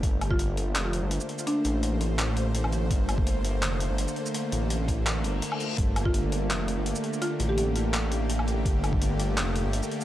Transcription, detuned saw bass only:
X:1
M:4/4
L:1/16
Q:1/4=167
K:Gm
V:1 name="Detuned saw bass" clef=bass
G,,,8 F,,,3 G,,,2 z3 | z2 A,,,12- A,,,2 | G,,,8 F,,,3 G,,,2 z3 | z2 A,,,8 G,,,2 z4 |
G,,,8 F,,,3 G,,,2 z3 | z2 A,,,12- A,,,2 | G,,,8 F,,,3 G,,,2 z3 |]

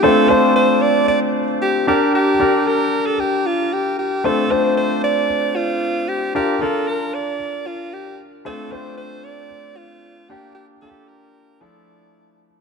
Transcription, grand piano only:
X:1
M:4/4
L:1/8
Q:1/4=114
K:Gdor
V:1 name="Grand piano"
[A,CDFc] [A,CDFc]3 z3 [DGB]- | [DGB] [DGB]3 z4 | [A,CDFc] [A,CDFc]3 z4 | [DFB] [DFB]3 z4 |
[A,CDFc] [A,CDFc]3 z3 [B,DG]- | [B,DG] [B,DFG]3 [F,A,DEA]3 z |]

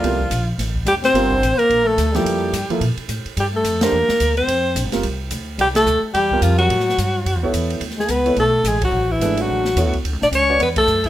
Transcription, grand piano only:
X:1
M:4/4
L:1/8
Q:"Swing" 1/4=216
K:Cmix
V:1 name="Grand piano"
[G,B,CEFABd] z6 z | [G,CFB] z6 [F,B,EA]- | [F,B,EA]2 z [F,B,EA] z4 | z3 [A,DGc] z4 |
z3 [G,CFB] z4 | z4 z [G,CFB]3 | z4 z [=B,EA^c]3 | [K:Dlyd] z3 [B,EAc] z4 |
z2 [A,DGB]3 z [B,EAc] z | z3 [CFBd] z4 |]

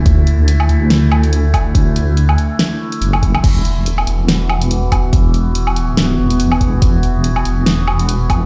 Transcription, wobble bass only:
X:1
M:4/4
L:1/8
Q:"Swing 16ths" 1/4=142
K:Dmix
V:1 name="Wobble bass" clef=bass
D,,3 D,,4 D,,- | D,,3 z3 F,,,2 | E,,,3 E,,,4 E,,,- | E,,,4- E,,, E,,,3 |
E,,,3 E,,,4 E,,, |]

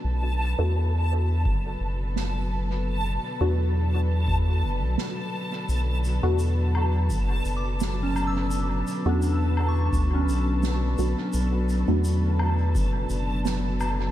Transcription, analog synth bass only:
X:1
M:4/4
L:1/16
Q:"Swing 16ths" 1/4=85
K:Bm
V:1 name="Analog synth bass" clef=bass
B,,,3 E,,4- E,, F,,,2 F,,,6- | F,,,2 z E,,6- E,, F,,, B,,, z4 | B,,,3 E,,4- E,, F,,,2 F,,,6- | F,,,2 z E,,4- E,, D,,2 B,,,4 B,,, z |
B,,,3 E,,4- E,, F,,,2 F,,,6 |]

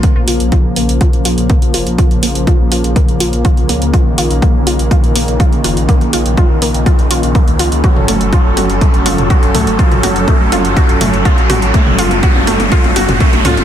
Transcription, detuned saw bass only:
X:1
M:4/4
L:1/16
Q:1/4=123
K:Bbm
V:1 name="Detuned saw bass" clef=bass
z B,,, B,,, B,,, z B,,, B,,, B,,, z B,,, B,,, B,,, z B,,, F,,, B,,, | z B,,, B,,, B,,, z B,,, B,,, B,,, z B,,, B,,, B,,, z D,, D,, D,, | z B,,, B,,, B,,, z B,,, B,,, B,,, z B,,, B,,, B,,, z B,,, F,,, B,,, | z B,,, B,,, B,,, z B,,, B,,, B,,, z B,,, B,,, B,,, z D,, D,, D,, |
z G,,, G,,, G,,, z G,,, G,,, G,,, z G,,, G,,, G,,, z G,,, D,, G,,, | z G,,, G,,, G,,, z G,,, G,,, G,,, z G,,, G,,, G,,, z =A,,, A,,, A,,, | z G,,, G,,, G,,, z G,,, G,,, G,,, z G,,, G,,, G,,, z G,,, D,, G,,, |]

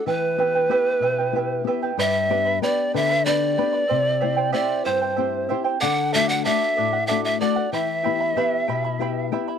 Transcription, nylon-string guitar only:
X:1
M:6/8
L:1/8
Q:3/8=63
K:Em
V:1 name="Nylon-string guitar"
E, [B,EG] [B,EG] B,, [B,EG] [B,EG] | G,, [B,DG] [B,DG] D, [B,DG] [B,DG] | C, [CEG] [CEG] G,, [CEG] [CEG] | D, [A,DF] [A,DF] A,, [A,DF] [A,DF] |
E, [B,EG] [B,EG] B,, [B,EG] [B,EG] |]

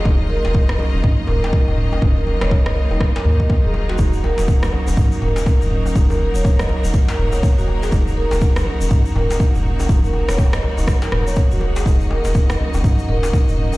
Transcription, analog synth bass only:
X:1
M:4/4
L:1/16
Q:"Swing 16ths" 1/4=122
K:Ebm
V:1 name="Analog synth bass" clef=bass
E,,,3 E,,,3 z E,,, z2 E,,,3 E,,,3 | E,,,3 E,,,3 z E,,, z2 E,,3 E,,,3 | E,,,3 E,,,3 z E,,, z2 E,,,3 E,,,3 | E,,,3 E,,,3 z E,,, z2 E,,,3 E,,,3 |
E,,,3 E,,,3 z E,,, z2 E,,,3 E,,,3 | E,,,3 E,,,3 z E,,, z2 E,,,3 E,,,3 | E,,,3 E,,,3 z E,,, z2 E,,,3 E,,,3 |]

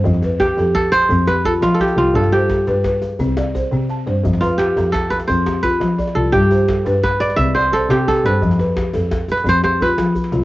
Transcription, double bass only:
X:1
M:12/8
L:1/8
Q:3/8=115
K:Flyd
V:1 name="Double bass" clef=bass
F,,3 F,,3 F,,3 F, z C,, | G,,3 G,,3 C,,3 C, z G,, | F,,3 F,,3 F,,3 F, z C,, | G,,3 G,,3 C,,3 C, z G,, |
F,,3 F,,3 F,,3 F, z C,, |]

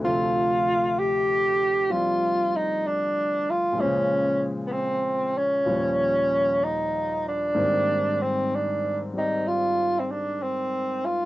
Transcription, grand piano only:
X:1
M:4/4
L:1/16
Q:"Swing" 1/4=64
K:Dphr
V:1 name="Grand piano"
_G z12 z3 | z16 | z16 |]
V:2 name="Grand piano" clef=bass
[D,,C,F,A,C]8 [F,G,Cd]8 | [B,,_D,F,_A,c]8 [E,,B,,F,G,c_d]8 | [_A,,E,G,B,C]6 [G,Cd]8- [G,Cd]2 |]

